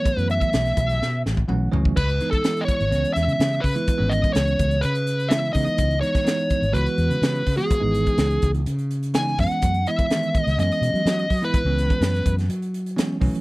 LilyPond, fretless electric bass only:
\new Staff \with { instrumentName = "Fretless electric bass" } { \clef bass \time 4/4 \key cis \minor \tempo 4 = 125 r16 fis,8 r16 b,,8 b,,8 b,8 a,,8 b,,8 cis,8 | cis,8 r4 r16 gis,,16 cis,16 r16 e,16 cis16 cis8 cis16 r16 | r16 gis,,8 r16 cis,8 cis,8 cis4. cis16 r16 | cis,8 r4 r16 gis,,16 cis,16 r16 e,16 cis16 cis8 cis16 r16 |
r16 gis,,8 r16 cis,8 cis,8 cis4. fis,16 r16 | fis,8 r4 r16 cis,16 fis,16 r16 b,16 fis16 fis8 fis16 r16 | r16 cis,8 r16 fis,8 fis,8 fis4. b,,16 r16 | }